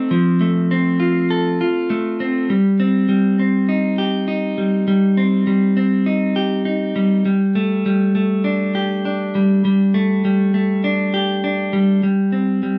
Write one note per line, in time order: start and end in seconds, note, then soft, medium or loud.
0.00 0.11 A3 medium
0.00 0.71 C4 medium
0.00 0.11 D#4 medium
0.00 0.11 A4 medium
0.11 1.60 F3 medium
0.41 1.89 A3 medium
0.71 2.19 C4 medium
1.00 1.60 F4 medium
1.30 2.49 A4 medium
1.61 2.50 F4 medium
1.90 2.49 A3 medium
2.20 2.50 C4 medium
2.50 3.08 G3 medium
2.80 3.38 C4 soft
3.09 4.57 G3 soft
3.39 4.88 C4 soft
3.69 4.27 D#4 soft
3.98 6.36 G4 soft
4.28 5.77 D#4 soft
4.58 4.87 G3 soft
4.88 5.47 G3 medium
5.17 5.76 C4 soft
5.47 6.95 G3 soft
5.77 7.26 C4 soft
6.06 6.64 D#4 soft
6.36 7.58 G4 soft
6.65 7.25 D#4 soft
6.96 7.25 G3 soft
7.25 7.85 G3 medium
7.55 8.14 A3 soft
7.86 9.35 G3 soft
8.15 9.64 A3 soft
8.44 9.04 D4 medium
8.75 10.24 G4 medium
9.05 10.54 D4 medium
9.35 9.64 G3 soft
9.65 10.24 G3 medium
9.94 10.53 A3 medium
10.25 11.72 G3 soft
10.54 12.03 A3 soft
10.84 11.43 D4 medium
11.14 12.03 G4 medium
11.44 12.03 D4 medium
11.73 12.02 G3 medium
12.03 12.62 G3 soft
12.32 12.78 C4 soft
12.63 12.78 G3 soft